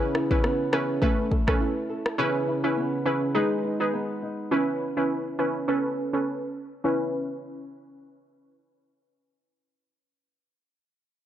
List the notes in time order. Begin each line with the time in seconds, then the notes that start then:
Already playing: C#3 B3 C#4 E4 G#4 B4
0.15 E4, cross-stick
0.31 C#4 E4 B4, kick
0.44 B3, cross-stick
0.73 C#4 E4 G#4 B4, cross-stick
1.02 A3 C#4 A4 B4, kick
1.31 A4, kick
1.47 C#4 A4 B4, kick, cross-stick
1.60 E4
1.90 A4
2.06 cross-stick
2.18 C#3 C#4 E4 G#4 B4
2.48 E4
2.64 C#4 E4 B4
2.77 B3
3.05 C#4 E4 G#4 B4
3.35 G#3 D#4 G#4 B4
3.64 D#4
3.80 D#4 G#4 B4
3.93 B3
4.23 D#4
4.51 C#4 E4 B4
4.97 C#4 E4 B4
5.39 C#4 E4 B4
5.68 C#4 A4 B4
6.13 C#4 A4 B4
6.84 C#4 E4 B4